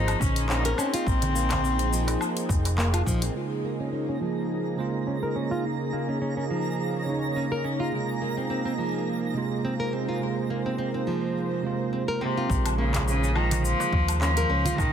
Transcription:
Already playing: analog synth bass G#1, nylon-string guitar F3, analog synth pad A#3 D#4 G#4 C5, cello D#4
0.08 closed hi-hat, darbuka ka, darbuka tek, low woodblock, shaker
0.19 analog synth bass A#1, cello C#4, kick, darbuka tek, darbuka dum, shaker
0.36 closed hi-hat, shaker
0.49 cello C#4, nylon-string guitar C#4, clap, shaker
0.57 cello D#4
0.63 cello C#4, nylon-string guitar A#4, closed hi-hat, darbuka tek, shaker
0.76 cello C4, nylon-string guitar C#4, low woodblock, shaker
0.94 nylon-string guitar F4, closed hi-hat, shaker
1.06 analog synth bass A#1, kick, shaker
1.22 closed hi-hat, darbuka ka, darbuka dum, shaker
1.35 nylon-string guitar A#3, shaker
1.51 nylon-string guitar C4, kick, clap, closed hi-hat, darbuka dum, low woodblock, shaker
1.64 nylon-string guitar C4, shaker
1.79 nylon-string guitar C4, closed hi-hat, shaker
1.93 nylon-string guitar F3, shaker
2.08 closed hi-hat, darbuka ka, darbuka tek, shaker
2.21 low woodblock, shaker
2.37 closed hi-hat, shaker
2.49 analog synth bass F1, kick, darbuka tek, shaker
2.65 closed hi-hat, darbuka tek, shaker
2.78 nylon-string guitar A#3, clap, shaker
2.93 nylon-string guitar F4, closed hi-hat, low woodblock, shaker
3.06 analog synth bass A#1, nylon-string guitar F3, kick, shaker
3.22 nylon-string guitar C4, closed hi-hat, darbuka tek, shaker
3.33 tine electric piano C#3 G#3 F4 C5, synth texture A#5
3.64 nylon-string guitar A#3
3.80 nylon-string guitar C#4
3.92 nylon-string guitar C#4
4.09 nylon-string guitar C#4
4.21 nylon-string guitar F3
4.76 tine electric piano C#3 G#3 F4 C5
5.07 nylon-string guitar C#4
5.23 nylon-string guitar A#4
5.36 nylon-string guitar C#4
5.51 nylon-string guitar F4
5.62 tine electric piano C#3 A#3
5.67 tine electric piano D#4
5.93 nylon-string guitar A#3
6.09 nylon-string guitar C#4
6.21 nylon-string guitar C#4
6.37 nylon-string guitar C#4
6.51 nylon-string guitar F3
6.69 analog synth pad C#5
7.06 tine electric piano C#3 A#3 D#4
7.36 nylon-string guitar C#4
7.52 nylon-string guitar A#4
7.64 nylon-string guitar C#4
7.80 nylon-string guitar F4
7.91 tine electric piano C3 G#3 A#3 F4
8.22 nylon-string guitar A#3
8.37 nylon-string guitar C4
8.50 nylon-string guitar C4
8.65 nylon-string guitar C4
8.78 nylon-string guitar F3
9.17 analog synth pad C5
9.34 tine electric piano C3 G#3 A#3
9.38 tine electric piano F4
9.65 nylon-string guitar C4
9.80 nylon-string guitar A#4
9.93 nylon-string guitar C4
10.09 nylon-string guitar F4
10.19 tine electric piano C3 G#3 A#3 F4
10.50 nylon-string guitar A#3
10.66 nylon-string guitar C4
10.78 nylon-string guitar C4
10.94 nylon-string guitar C4
11.07 nylon-string guitar F3
11.62 tine electric piano C3 G#3 A#3 F4
11.93 nylon-string guitar C4
12.08 nylon-string guitar A#4
12.21 cello C3, nylon-string guitar C4
12.37 nylon-string guitar F4
12.48 analog synth bass A#1, tine electric piano C#3 G#3 C5, kick, shaker
12.52 tine electric piano F4
12.66 closed hi-hat, low woodblock, shaker
12.78 cello C#3, nylon-string guitar A#3
12.94 nylon-string guitar C#4, kick, clap, closed hi-hat, shaker
13.07 cello C#3, nylon-string guitar C#4, shaker
13.23 nylon-string guitar C#4, shaker
13.36 cello D#3, nylon-string guitar F3, low woodblock
13.51 closed hi-hat, darbuka tek, darbuka dum, shaker
13.64 cello F3, shaker
13.80 darbuka tek, shaker
13.92 analog synth bass D#2, kick, darbuka ka, darbuka tek
14.08 closed hi-hat, low woodblock, shaker
14.21 cello F3, nylon-string guitar C#4, clap, shaker
14.37 nylon-string guitar A#4, closed hi-hat, darbuka tek, shaker
14.49 analog synth bass C#2, nylon-string guitar C#4
14.65 nylon-string guitar F4, closed hi-hat, darbuka dum, shaker
14.76 analog synth bass A#1, tine electric piano C#3 A#3, cello D#3, kick, low woodblock, shaker
14.80 tine electric piano D#4

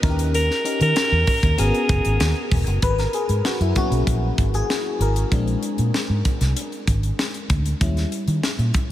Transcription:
0.02 fingered electric bass D#2, fm electric piano C#4 D#4 E4 A#4, kick, closed hi-hat
0.10 fm electric piano G4
0.19 closed hi-hat
0.34 alto saxophone A#4, closed hi-hat
0.51 snare
0.64 fm electric piano C#4 D#4 G4 A#4, closed hi-hat
0.81 fingered electric bass D#3, alto saxophone A#4, closed hi-hat
0.96 snare, closed hi-hat
1.12 fingered electric bass E2
1.27 kick, open hi-hat
1.43 fingered electric bass D#2, kick, closed hi-hat
1.58 fingered electric bass G#1, fm electric piano B3 C#4 F#4 A#4, alto saxophone G#4, closed hi-hat
1.74 closed hi-hat
1.89 fingered electric bass F#1, kick, closed hi-hat
2.05 fingered electric bass G#1, closed hi-hat
2.20 fingered electric bass D#2, snare, closed hi-hat
2.51 fingered electric bass E1, kick, open hi-hat
2.67 fingered electric bass F#1, closed hi-hat
2.82 fingered electric bass G#1, fm electric piano B4, kick, closed hi-hat
2.98 fm electric piano A#4, snare, closed hi-hat
3.13 fm electric piano G#4, closed hi-hat
3.29 fingered electric bass G#2, closed hi-hat
3.45 fm electric piano F#4, snare
3.60 fingered electric bass F#2, fm electric piano E4, closed hi-hat
3.76 fm electric piano F#3 A#3 B3 C#4 F#4, kick, closed hi-hat
3.91 fingered electric bass B1, closed hi-hat
4.07 fingered electric bass A#1, kick, closed hi-hat
4.38 fingered electric bass G#1, kick, closed hi-hat
4.54 fm electric piano G#4, closed hi-hat
4.70 snare
5.00 fingered electric bass G#1, fm electric piano A#4, closed hi-hat
5.16 closed hi-hat
5.31 fingered electric bass A#1, fm electric piano G#3 C4 D4, kick, closed hi-hat
5.47 closed hi-hat
5.63 closed hi-hat
5.78 fingered electric bass A#2, closed hi-hat
5.94 snare
6.09 fingered electric bass G#2
6.25 kick, closed hi-hat
6.41 fingered electric bass C2, snare, closed hi-hat
6.57 closed hi-hat
6.72 closed hi-hat
6.87 fingered electric bass G#1, kick, closed hi-hat
7.03 closed hi-hat
7.19 snare
7.34 closed hi-hat
7.50 fingered electric bass D2, kick, closed hi-hat
7.66 closed hi-hat
7.81 fingered electric bass D#2, fm electric piano G3 C#4 E4, kick, closed hi-hat
7.97 snare, closed hi-hat
8.12 closed hi-hat
8.27 fingered electric bass D#3, closed hi-hat
8.43 snare
8.59 fingered electric bass A#2, closed hi-hat
8.74 kick, closed hi-hat

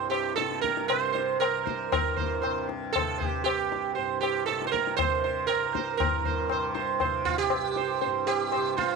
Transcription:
Already playing: tanpura C2 G2 C3
0.10 sitar G4, tabla na
0.36 tanpura C3, sitar A4, tabla te
0.51 tabla te
0.61 sitar A#4, tabla ke
0.77 tabla te
0.88 tanpura C3, sitar C5, tabla na
1.13 sitar C5, tabla te
1.40 tanpura C2, sitar A#4, tabla na
1.65 sitar C5, tabla ke
1.92 tanpura G2, sitar A#4, tabla na, tabla ge
2.17 sitar C5, tabla ge
2.42 tanpura C3, sitar C5, tabla na
2.69 tabla te
2.93 tanpura C3, sitar A4, tabla na, tabla ge
3.18 sitar C5, tabla ge
3.28 sitar G4
3.44 tanpura C2, sitar G4, tabla na
3.72 tabla te
3.95 tanpura G2, sitar C5, tabla tin
4.21 sitar G4, tabla na
4.46 tanpura C3, sitar A4, tabla te
4.62 tabla te
4.67 sitar C5
4.72 sitar A#4, tabla ke
4.87 tabla te
4.97 sitar C5, tabla na, tabla ge
5.01 tanpura C3
5.24 sitar C5, tabla te
5.47 sitar A#4, tabla na
5.52 tanpura C2
5.74 sitar C5, tabla ke
5.97 sitar A#4, tabla na, tabla ge
6.03 tanpura G2
6.24 sitar C5, tabla ge
6.50 tanpura C3, sitar C5, tabla na
6.74 sitar C5, tabla te
7.00 sitar C5, tabla na, tabla ge
7.05 tanpura C3
7.25 sitar F4, tabla ge
7.38 sitar G4
7.50 tabla na
7.56 tanpura C2
7.76 sitar C5, tabla te
8.01 sitar C5, tabla tin
8.06 tanpura G2
8.27 sitar G4, tabla na
8.52 sitar C5, tabla na
8.56 tanpura C3
8.77 sitar F4 C5, tabla ke

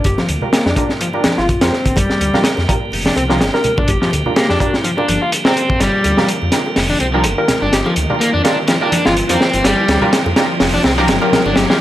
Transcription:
Already playing: tonewheel organ D3 F3 G3 A#3 F4, riser
0.04 detuned saw bass G1, soft synth lead G4, kick, closed hi-hat
0.18 overdriven electric guitar F3, snare, high bongo
0.29 detuned saw bass D2, closed hi-hat
0.41 synth stab D4 F4 G4 A#4, low conga
0.53 overdriven electric guitar A#3, snare, closed hi-hat, high bongo
0.66 detuned saw bass F2, overdriven electric guitar D4, snare
0.76 overdriven electric guitar D4, synth stab D4 F4 G4 A#4, kick, closed hi-hat, high bongo
0.89 snare
1.01 overdriven electric guitar F3, closed hi-hat
1.13 overdriven electric guitar D4, synth stab D4 F4 G4 A#4, high bongo
1.24 snare, closed hi-hat, high conga
1.38 detuned saw bass G1, soft synth lead F4, overdriven electric guitar F4, snare, high bongo
1.49 kick, closed hi-hat
1.61 detuned saw bass F2, overdriven electric guitar C4, synth stab D4 F4 G4 A#4, snare, closed hi-hat
1.72 snare, high bongo
1.86 detuned saw bass G1, kick, closed hi-hat
1.96 detuned saw bass G1, overdriven electric guitar G3, tonewheel organ G4, kick, closed hi-hat, high bongo
2.10 snare
2.21 detuned saw bass D2, closed hi-hat
2.33 synth stab D4 F4 G4 A#4, snare, high bongo, high conga, low conga
2.44 snare, closed hi-hat
2.57 detuned saw bass F2, snare, high bongo
2.68 synth stab D4 F4 G4 A#4, kick, closed hi-hat
2.92 detuned saw bass F1, open hi-hat, high bongo
3.05 overdriven electric guitar D4, snare, high conga
3.16 detuned saw bass C2, overdriven electric guitar C4, closed hi-hat, high bongo
3.29 overdriven electric guitar F3, synth stab D4 F4 G4 A#4, snare
3.41 detuned saw bass G1, snare, closed hi-hat
3.53 synth stab D4 F4 G4 A#4, soft synth lead A#4, snare, high bongo
3.64 soft synth lead A#4, closed hi-hat, low conga
3.77 detuned saw bass G1, overdriven electric guitar D4, kick, high bongo
3.88 detuned saw bass G1, soft synth lead G4, kick, closed hi-hat
4.02 overdriven electric guitar F3, soft synth lead G4, snare
4.12 detuned saw bass D2, closed hi-hat, high bongo
4.26 synth stab D4 F4 G4 A#4, low conga
4.36 overdriven electric guitar A#3, soft synth lead G4, snare, closed hi-hat, high bongo
4.49 detuned saw bass F2, overdriven electric guitar D4, snare
4.60 overdriven electric guitar D4, synth stab D4 F4 G4 A#4, kick, closed hi-hat
4.74 snare, high bongo
4.84 overdriven electric guitar F3, closed hi-hat
4.97 overdriven electric guitar D4, synth stab D4 F4 G4 A#4, high bongo
5.08 detuned saw bass G1, closed hi-hat, high conga
5.22 overdriven electric guitar F4
5.32 closed hi-hat, high bongo
5.45 overdriven electric guitar C4, synth stab D4 F4 G4 A#4, snare
5.57 closed hi-hat, high bongo
5.70 kick
5.80 detuned saw bass G1, overdriven electric guitar G3, tonewheel organ F4, snare, closed hi-hat, high bongo
6.04 detuned saw bass D2, closed hi-hat, high bongo
6.17 synth stab D4 F4 G4 A#4, snare, high conga, low conga
6.29 closed hi-hat
6.42 detuned saw bass F2, high bongo
6.52 synth stab D4 F4 G4 A#4, snare, closed hi-hat
6.66 high bongo
6.76 detuned saw bass F1, snare, open hi-hat
6.90 overdriven electric guitar D4, high conga
7.00 detuned saw bass C2, overdriven electric guitar C4, closed hi-hat, high bongo
7.14 overdriven electric guitar F3, synth stab D4 F4 G4 A#4
7.24 detuned saw bass G1, closed hi-hat, high bongo
7.38 synth stab D4 F4 G4 A#4, soft synth lead A#4
7.48 soft synth lead A#4, snare, closed hi-hat, low conga
7.62 detuned saw bass G1, overdriven electric guitar D4, high bongo
7.73 detuned saw bass G1, soft synth lead G4, snare, closed hi-hat
7.86 overdriven electric guitar F3, high bongo
7.96 detuned saw bass D2, closed hi-hat
8.10 synth stab D4 F4 G4 A#4, low conga
8.20 overdriven electric guitar A#3, closed hi-hat, high bongo
8.33 detuned saw bass F2, overdriven electric guitar D4
8.44 overdriven electric guitar D4, synth stab D4 F4 G4 A#4, snare, closed hi-hat, high bongo
8.68 overdriven electric guitar F3, snare, closed hi-hat
8.81 overdriven electric guitar D4, synth stab D4 F4 G4 A#4, high bongo
8.92 closed hi-hat, high conga
9.05 detuned saw bass G1, overdriven electric guitar F4, soft synth lead F4, snare, high bongo
9.17 closed hi-hat
9.29 detuned saw bass F2, overdriven electric guitar C4, synth stab D4 F4 G4 A#4, closed hi-hat
9.41 snare, high bongo
9.53 detuned saw bass G1, closed hi-hat
9.64 detuned saw bass G1, overdriven electric guitar G3, tonewheel organ E4, snare, closed hi-hat, high bongo
9.88 detuned saw bass D2, snare, closed hi-hat
10.02 synth stab D4 F4 G4 A#4, high bongo, high conga, low conga
10.13 snare, closed hi-hat
10.26 detuned saw bass F2, high bongo
10.36 synth stab D4 F4 G4 A#4, snare, closed hi-hat
10.60 detuned saw bass F1, snare, open hi-hat, high bongo
10.74 overdriven electric guitar D4, high conga
10.84 detuned saw bass C2, overdriven electric guitar C4, snare, high bongo
10.98 overdriven electric guitar F3, synth stab D4 F4 G4 A#4
11.08 detuned saw bass G1, snare, closed hi-hat
11.22 synth stab D4 F4 G4 A#4, soft synth lead A#4, high bongo
11.33 soft synth lead A#4, snare, closed hi-hat, low conga
11.45 detuned saw bass G1, overdriven electric guitar D4, high bongo
11.56 detuned saw bass G1, soft synth lead G4, snare, closed hi-hat
11.70 overdriven electric guitar F3, soft synth lead G4, snare

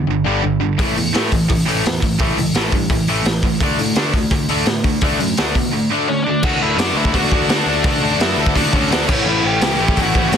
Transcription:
0.07 picked electric bass G1, distorted electric guitar G2 D3
0.26 picked electric bass G1, distorted electric guitar G2 D3 G3
0.43 picked electric bass G1, distorted electric guitar G2 D3
0.61 picked electric bass G1, distorted electric guitar G2 D3
0.79 picked electric bass A1, distorted electric guitar A2 E3 A3, kick, open hi-hat
0.96 picked electric bass E2, distorted electric guitar A2 E3, open hi-hat
1.13 distorted electric guitar A2 E3 A3, picked electric bass A2, snare, open hi-hat
1.31 picked electric bass A1, distorted electric guitar A2 E3, kick, open hi-hat
1.48 picked electric bass A1, distorted electric guitar A2 E3, kick, open hi-hat
1.66 picked electric bass A1, distorted electric guitar A2 E3 A3, open hi-hat
1.83 picked electric bass E2, distorted electric guitar A2 E3, open hi-hat
1.87 snare
2.00 picked electric bass A1, distorted electric guitar A2 E3, kick, open hi-hat
2.19 picked electric bass A1, distorted electric guitar A2 E3 A3, kick, open hi-hat
2.36 picked electric bass C#2, distorted electric guitar A2 E3, open hi-hat
2.53 picked electric bass A1, distorted electric guitar A2 E3 A3, snare, open hi-hat
2.72 picked electric bass G2, distorted electric guitar A2 E3, kick, open hi-hat
2.90 picked electric bass A1, distorted electric guitar A2 E3, kick, open hi-hat
3.07 picked electric bass A1, distorted electric guitar A2 E3 A3, open hi-hat
3.23 picked electric bass A1, distorted electric guitar A2, snare, open hi-hat
3.27 distorted electric guitar E3
3.43 picked electric bass A1, distorted electric guitar A2 E3, kick, open hi-hat
3.60 picked electric bass D2, distorted electric guitar D3 A3 D4, kick, open hi-hat
3.78 picked electric bass A2, distorted electric guitar D3 A3, open hi-hat
3.95 picked electric bass D3, distorted electric guitar D3 A3 D4, snare, open hi-hat
4.14 picked electric bass D2, distorted electric guitar D3 A3, kick, open hi-hat
4.31 picked electric bass D2, distorted electric guitar D3 A3, kick, open hi-hat
4.49 picked electric bass D2, distorted electric guitar D3 A3 D4, open hi-hat
4.66 picked electric bass A2, distorted electric guitar D3 A3, snare, open hi-hat
4.84 picked electric bass D2, distorted electric guitar D3 A3, kick, open hi-hat
5.01 picked electric bass D2, distorted electric guitar D3 A3 D4, kick, open hi-hat
5.19 picked electric bass F#2, distorted electric guitar D3 A3, open hi-hat
5.37 picked electric bass D2, distorted electric guitar D3 A3 D4, snare, open hi-hat
5.55 picked electric bass B2, distorted electric guitar D3 A3, kick, open hi-hat
5.72 distorted electric guitar D3 A3
5.90 distorted electric guitar D3 A3 D4
6.08 distorted electric guitar D3 A3, lead electric guitar C#4 C#5
6.24 distorted electric guitar D3 A3, lead electric guitar D4 D5
6.43 picked electric bass D2, distorted electric guitar D3 A3, lead electric guitar F#4 F#5, kick, crash
6.47 distorted electric guitar D4 F#4 A4
6.60 picked electric bass D2, distorted electric guitar D3 A3 D4 F#4 A4, lead electric guitar E4 E5
6.77 picked electric bass F#2, distorted electric guitar D3 A3 D4 F#4 A4, lead electric guitar D4 D5, snare, open hi-hat
6.94 picked electric bass D2, distorted electric guitar D3 A3 D4 F#4, lead electric guitar E4 E5
7.00 distorted electric guitar A4
7.05 kick
7.14 picked electric bass D2, distorted electric guitar D3 A3 D4 F#4 A4, lead electric guitar F#4 F#5, kick, open hi-hat
7.31 picked electric bass D2, distorted electric guitar D3 A3 D4 F#4 A4, kick
7.47 picked electric bass D2, distorted electric guitar D3 A3 D4, lead electric guitar D4 D5, snare, open hi-hat
7.51 distorted electric guitar F#4 A4
7.66 picked electric bass D2, distorted electric guitar D3 A3 D4 F#4 A4
7.84 picked electric bass D2, distorted electric guitar D3 A3 D4 F#4 A4, lead electric guitar D4 D5, kick, open hi-hat
8.00 picked electric bass D2, distorted electric guitar D3 A3 D4
8.04 distorted electric guitar F#4 A4
8.12 lead electric guitar D5
8.19 picked electric bass F#2, distorted electric guitar D3 A3 D4 F#4, lead electric guitar E4 E5, snare, open hi-hat
8.23 distorted electric guitar A4
8.37 picked electric bass D2, distorted electric guitar D3 A3 D4 F#4 A4
8.46 kick
8.54 picked electric bass D2, distorted electric guitar D3 A3 D4 F#4 A4, lead electric guitar D4 D5, kick, open hi-hat
8.72 picked electric bass D2, distorted electric guitar D3 A3 D4 F#4 A4, lead electric guitar C#4 C#5, kick
8.89 picked electric bass D2, distorted electric guitar D3 A3 D4 F#4 A4, lead electric guitar D4 D5, snare, open hi-hat
9.06 picked electric bass A1, distorted electric guitar A2 E3 A3 C#4 E4, lead electric guitar C#4 C#5, kick, crash
9.23 picked electric bass A1, distorted electric guitar A2 E3 A3 C#4 E4
9.28 lead electric guitar E4 E5
9.40 picked electric bass A1, distorted electric guitar A2 E3 A3 C#4 E4
9.47 lead electric guitar G4 G5
9.60 picked electric bass C#2, distorted electric guitar A2 E3 A3 C#4 E4, snare, open hi-hat
9.79 picked electric bass A1, distorted electric guitar A2 E3 A3 C#4 E4
9.88 kick
9.96 picked electric bass A1, distorted electric guitar A2 E3 A3 C#4 E4, kick, open hi-hat
10.02 lead electric guitar F#4 F#5
10.15 picked electric bass A1, distorted electric guitar A2 E3 A3 C#4 E4, kick
10.32 picked electric bass A1, distorted electric guitar A2 E3 A3, snare, open hi-hat

